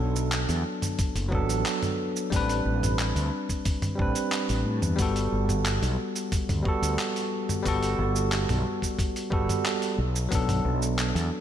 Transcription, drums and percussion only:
0.16 cabasa
0.32 clap, open hi-hat, cabasa
0.49 open hi-hat, cabasa
0.82 mid tom, open hi-hat, cabasa
0.99 kick, open hi-hat, cabasa
1.16 open hi-hat, cabasa
1.32 kick
1.49 open hi-hat, cabasa
1.66 clap, open hi-hat, cabasa
1.82 mid tom, open hi-hat, cabasa
2.16 cabasa
2.32 kick, open hi-hat, cabasa
2.49 open hi-hat, cabasa
2.83 mid tom, open hi-hat, cabasa
2.99 clap, open hi-hat, cabasa
3.16 open hi-hat, cabasa
3.49 kick, open hi-hat, cabasa
3.65 kick, open hi-hat, cabasa
3.82 mid tom, open hi-hat, cabasa
3.99 kick
4.15 open hi-hat, cabasa
4.32 clap, open hi-hat, cabasa
4.49 open hi-hat, cabasa
4.82 mid tom, cabasa
4.99 kick, open hi-hat, cabasa
5.16 open hi-hat, cabasa
5.49 mid tom, cabasa
5.65 clap, open hi-hat, cabasa
5.83 open hi-hat, cabasa
6.16 open hi-hat, cabasa
6.32 kick, open hi-hat, cabasa
6.49 mid tom, open hi-hat, cabasa
6.65 kick
6.83 open hi-hat, cabasa
6.99 clap, open hi-hat, cabasa
7.16 open hi-hat, cabasa
7.49 mid tom, cabasa
7.65 kick, open hi-hat, cabasa
7.83 open hi-hat, cabasa
8.16 cabasa
8.32 clap, open hi-hat, cabasa
8.49 mid tom, open hi-hat, cabasa
8.82 kick, open hi-hat, cabasa
8.99 kick, open hi-hat, cabasa
9.16 open hi-hat, cabasa
9.32 kick
9.49 mid tom, open hi-hat, cabasa
9.65 clap, open hi-hat, cabasa
9.82 open hi-hat, cabasa
10.16 cabasa
10.32 kick, open hi-hat, cabasa
10.49 mid tom, open hi-hat, cabasa
10.82 cabasa
10.99 clap, open hi-hat, cabasa
11.16 open hi-hat, cabasa

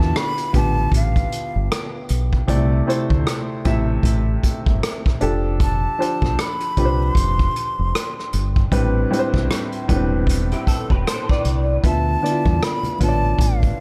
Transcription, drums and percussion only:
0.01 cross-stick
0.16 cross-stick, closed hi-hat
0.37 closed hi-hat
0.54 kick, closed hi-hat
0.92 kick, closed hi-hat
1.16 kick, closed hi-hat
1.32 closed hi-hat
1.72 cross-stick, closed hi-hat
2.09 closed hi-hat
2.33 kick
2.48 kick, closed hi-hat
2.90 closed hi-hat
3.10 kick
3.27 cross-stick, closed hi-hat
3.65 kick, closed hi-hat
4.03 kick, closed hi-hat
4.43 kick, closed hi-hat
4.66 kick
4.83 cross-stick, closed hi-hat
5.06 kick, cross-stick
5.21 closed hi-hat
5.60 kick, closed hi-hat
6.02 closed hi-hat
6.22 kick, cross-stick
6.39 cross-stick, closed hi-hat
6.60 closed hi-hat
6.77 kick, closed hi-hat
7.15 kick, closed hi-hat
7.39 kick, closed hi-hat
7.56 closed hi-hat
7.95 cross-stick, closed hi-hat
8.19 cross-stick
8.33 closed hi-hat
8.56 kick
8.72 kick, closed hi-hat
9.13 closed hi-hat
9.34 kick, cross-stick
9.51 cross-stick, closed hi-hat
9.72 closed hi-hat
9.89 kick, closed hi-hat
10.27 kick, closed hi-hat
10.52 closed hi-hat
10.67 kick, closed hi-hat
10.90 kick
11.07 cross-stick, closed hi-hat
11.29 kick, cross-stick
11.45 closed hi-hat
11.84 kick, closed hi-hat, low conga
12.25 closed hi-hat
12.45 kick, high conga
12.61 cross-stick, closed hi-hat, muted conga
12.83 closed hi-hat, muted conga, low conga
12.99 kick, closed hi-hat, high conga
13.39 kick, closed hi-hat
13.62 kick, closed hi-hat, muted conga

